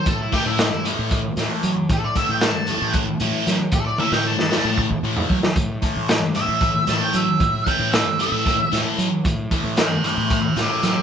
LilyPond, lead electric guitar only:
\new Staff \with { instrumentName = "Lead electric guitar" } { \time 7/8 \key c \lydian \tempo 4 = 114 a'16 e'16 g'16 e'16 e'8 r2 | a'16 d''16 e''16 g''16 a''4 r4. | a'16 d''16 e''16 g''16 a''4 r4. | r4. e''4 a''16 g''16 e''8~ |
e''8 g''8 e''8 e''4 r4 | r4 <e'' g''>8 <e'' g''>8 <e'' g''>8 <c'' e''>8 <c'' e''>8 | }